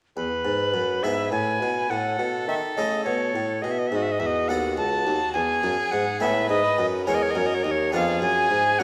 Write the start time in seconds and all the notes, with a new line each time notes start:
0.16 E2 B4
0.45 G#2
0.74 F#2
1.02 G#2 B3 E4 G#4 B4 E5
1.32 A2 G#5
1.61 B2
1.90 A2 A4 F#5
2.18 B2
2.47 D#3 E5
2.76 C#3 A3 E4 A4 D#5
3.04 B2 C#5
3.34 A2
3.62 B2 G#4 D#5
3.71 E5
3.79 D#5
3.87 E5
3.91 G#2 F#4
3.96 D#5
4.03 E5
4.12 D#5
4.19 E2 F#4 E5
4.26 D#5
4.48 D#2 B3 A4 F#5
4.77 C#2 A5
5.07 D#2
5.33 E2 G#4 G#5
5.63 F#2
5.92 G#2 F#5
6.20 A2 G#3 B3 G#4 B4 E5
6.49 G#2 D#5
6.78 F#2
7.07 E2 G#3 C#4 G#4 A#4 C#5
7.15 D#5
7.22 C#5
7.31 D#5
7.35 F#2 C#5
7.46 D#5
7.54 C#5
7.63 D#2 D#5
7.71 C#5
7.92 F2 B3 D4 F4 G#4 F5
8.21 F#2 G#5
8.50 G#2
8.79 F#2 A#3 A#4 F#5